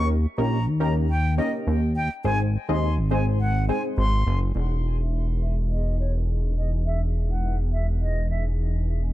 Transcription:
Already playing: D#2 A#3 C#4 D#4 G4 A#4
0.38 A#1 A#3 C#4 D#4 G4 A#4 A#5
0.67 D#2
0.80 A#3 C#4 D#4 G4 A#4 A#5
1.09 G5
1.38 A#3 C#4 D#4 G4 A#4 D#5
1.67 D#2
1.96 G5
2.24 G#1 G#3 C4 D#4 G#4 C5 G#5
2.69 D#2 G#3 C4 D#4 G#4 D#5 C6
2.98 G#1
3.11 G#3 C4 D#4 G#4 C5 G#5
3.40 F#5
3.69 G#3 C4 D#4 G#4 C5 G#5
3.98 G#1 C6
4.27 F#1
4.55 E1 B3 D#4 E4 G#4 F#5
5.00 E5
5.42 E5
5.71 D#5
6.00 C#5
6.57 D#5
6.86 E5
7.30 F#5
7.73 E5
8.02 D#5
8.30 E5

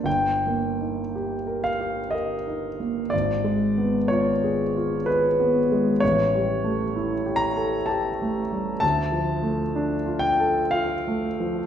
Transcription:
0.03 G1 G5
0.47 A#3
0.81 D#4
1.15 G4
1.47 A#4
1.64 F5
1.81 G4
2.11 A#4 D#5
2.47 D#4
2.80 A#3
3.10 G#1 D5
3.44 G#3
3.78 B3
4.08 F4 C#5
4.44 G#4
4.77 F4
5.06 G#4 B4
5.40 B3
5.72 G#3
6.00 A1 C#5
6.35 G3
6.64 A3
6.96 E4
7.26 G4
7.36 A#5
7.56 A4
7.86 G4 A5
8.22 A3
8.52 G3
8.80 D2 A5
9.12 F3
9.43 A3
9.76 D4
10.06 F4
10.19 G5
10.40 A4
10.71 F4 F5
11.08 A3
11.40 F3

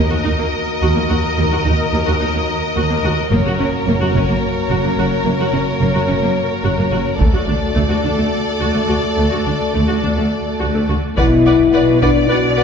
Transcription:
Already playing: A#3 F#4 A#4 D#5
0.11 D#2 F#4
0.25 D#2 D#4
0.39 D#2 A#3
0.81 D#2 F#4
0.96 D#2 A#3
1.10 D#2 F#4
1.38 D#2 A#3
1.52 D#2 F#4
1.64 D#2 D#4
1.93 D#2 A#3
2.07 D#2 F#4
2.20 D#2 D#4
2.35 D#2 A#3
2.76 D#2 F#4
2.90 D#2 A#3
3.04 D#2 F#4
3.31 F#1 F#2 A#3 F#4 A#4 C#5, taiko
3.46 F#2 F#4
3.59 F#1 F#2 C#4
3.86 F#1 F#2 A#3
4.01 F#2 F#4
4.14 F#1 F#2 C#4, taiko
4.28 F#2 A#3
4.70 F#1 F#2 F#4
4.84 F#2 A#3
4.98 F#1 F#2 F#4
5.25 F#1 F#2 A#3
5.39 F#2 F#4
5.53 F#1 F#2 C#4
5.80 F#1 F#2 A#3
5.94 F#2 F#4
6.08 F#1 F#2 C#4
6.22 F#2 A#3
6.63 F#1 F#2 F#4
6.78 F#2 A#3
6.91 F#1 F#2 F#4
7.19 D2 A3 F#4 A4 D5, taiko
7.33 D2 F#4
7.46 D2 D4
7.75 D2 A3
7.88 D2 F#4
8.03 D2 D4
8.17 D2 A3
8.61 D2 F#4
8.75 D2 A3
8.88 D2 F#4
9.17 D2 A3
9.31 D2 F#4
9.46 D2 D4
9.74 D2 A3
9.88 D2 F#4
10.03 D2 D4
10.17 D2 A3
10.60 D2 F#4
10.74 D2 A3
10.88 D2 F#4
11.17 B1 B2 E4 B4 D5 F#5, taiko, impact
11.46 B4 D5 F#5
11.73 B1 B2 B4 D5 F#5
12.01 D4 B4 D5 F#5, taiko
12.28 B1 B2 F#4 B4 D5 F#5
12.57 B4 D5 F#5

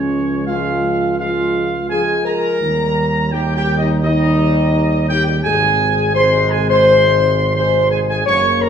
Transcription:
Already playing: C#2 F3 G#3 C#4 C#5
0.47 F3 G#3 F4 F5
1.18 F3 G#3 F4 F5
1.90 F3 G#3 G#4 G#5
2.25 A#4 A#5
2.61 D#2 D#3 G3
3.32 D#3 G3 G4 G5
3.56 G4 G5
3.78 D#4 D#5
4.03 D#3 G3 D#4 D#5
5.09 G4 G5
5.26 G4 G5
5.44 G#1 C3 G#3 G#4 G#5
6.15 C3 G#3 C5 C6
6.50 G#4 G#5
6.69 C5 C6
7.55 C3 G#3 C5 C6
7.91 G#4 G#5
8.09 G#4 G#5
8.25 F#1 C#3 A#3 C#5 C#6
8.62 A#4 A#5

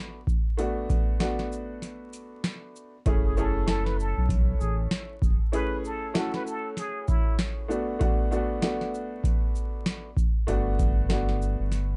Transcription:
Already playing: A3 B3 D4 F#4
0.27 kick, shaker
0.57 A3 B3 D4 F#4, closed hi-hat
0.90 kick, closed hi-hat, shaker
1.19 A3 B3 D4 F#4, snare, closed hi-hat
1.39 snare
1.52 shaker
1.82 snare, closed hi-hat
2.13 closed hi-hat, shaker
2.44 snare, closed hi-hat
2.76 shaker
3.06 F#1 A3 C#4 E4 G#4, kick, closed hi-hat
3.24 G#4
3.37 A3 C#4 E4 G#4 A4, shaker
3.66 A3 C#4 E4 A4, snare, closed hi-hat
3.85 B4, snare
4.00 A4, shaker
4.17 B1
4.29 kick, closed hi-hat
4.60 A1 G#4, shaker
4.91 snare, closed hi-hat
5.22 F#1, kick, shaker
5.52 A3 C#4 E4 G#4 B4, closed hi-hat
5.85 A4, shaker
6.14 A3 C#4 E4 F#4 A4, snare, closed hi-hat
6.34 B4, snare
6.46 A4, shaker
6.77 G#4, snare, closed hi-hat
7.08 E4, kick, shaker
7.39 snare, closed hi-hat
7.68 A3 B3 D4 F#4, shaker
7.99 A3 B3 D4 F#4, kick, closed hi-hat
8.31 A3 B3 D4 F#4, shaker
8.62 A3 B3 D4 F#4, snare, closed hi-hat
8.81 snare
8.95 shaker
9.24 kick, closed hi-hat
9.56 shaker
9.86 snare, closed hi-hat
10.17 kick, shaker
10.47 G1 A3 B3 D4 F#4, closed hi-hat
10.79 kick, closed hi-hat, shaker
11.09 A3 B3 D4 F#4, snare, closed hi-hat
11.29 snare
11.42 shaker
11.60 G1
11.72 snare, closed hi-hat

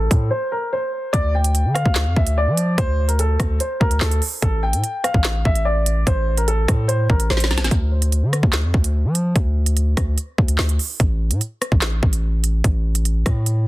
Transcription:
Already playing: A4
0.11 A2, kick, closed hi-hat
0.31 C5
0.52 A#4
0.73 C5
1.13 D2 D5, kick, closed hi-hat
1.35 G5
1.44 closed hi-hat
1.55 closed hi-hat
1.65 D3
1.74 F5, cross-stick, closed hi-hat
1.86 D2, kick
1.95 snare, clap, closed hi-hat
2.06 F2
2.16 D2 E5, kick
2.27 closed hi-hat
2.38 D5
2.47 F3
2.57 closed hi-hat
2.78 D2 C5, kick, closed hi-hat
3.08 A#4, closed hi-hat
3.19 A4, closed hi-hat
3.40 D2, kick, cross-stick, closed hi-hat
3.60 C5, closed hi-hat
3.80 D2 A#4, kick
3.91 closed hi-hat
4.00 D2 A4, snare, clap
4.11 closed hi-hat
4.22 open hi-hat
4.42 A1 A4, kick, closed hi-hat
4.63 G5
4.73 A2, closed hi-hat
4.84 closed hi-hat
5.04 F5, cross-stick, closed hi-hat
5.14 A1, kick
5.24 snare, clap, closed hi-hat
5.45 A1 E5, kick
5.55 closed hi-hat
5.65 D5
5.86 closed hi-hat
6.07 A1 C5, kick, closed hi-hat
6.38 A#4, closed hi-hat
6.48 A4, closed hi-hat
6.68 A2, kick, cross-stick, closed hi-hat
6.88 C5, closed hi-hat
7.09 A1 A#4, kick
7.20 closed hi-hat
7.30 A1 C5, snare
7.37 snare, closed hi-hat
7.44 snare
7.51 C2, snare, closed hi-hat
7.58 A1, snare, closed hi-hat
7.64 snare, closed hi-hat
7.71 D2, kick, closed hi-hat
8.02 closed hi-hat
8.12 closed hi-hat
8.22 D3
8.33 cross-stick, closed hi-hat
8.43 D2, kick
8.53 snare, clap, closed hi-hat
8.64 F2
8.74 D2, kick
8.84 closed hi-hat
9.05 F3
9.15 closed hi-hat
9.36 D2, kick, closed hi-hat
9.66 closed hi-hat
9.77 closed hi-hat
9.97 D2, kick, cross-stick, closed hi-hat
10.18 closed hi-hat
10.38 D2, kick
10.48 closed hi-hat
10.58 D2, snare, clap
10.69 closed hi-hat
10.79 open hi-hat
11.00 A1, kick, closed hi-hat
11.31 A2, closed hi-hat
11.41 closed hi-hat
11.62 cross-stick, closed hi-hat
11.72 A1, kick
11.81 snare, clap, closed hi-hat
12.03 A1, kick
12.13 closed hi-hat
12.44 closed hi-hat
12.64 A1, kick, closed hi-hat
12.95 closed hi-hat
13.05 closed hi-hat
13.26 A2, kick, cross-stick, closed hi-hat
13.46 closed hi-hat

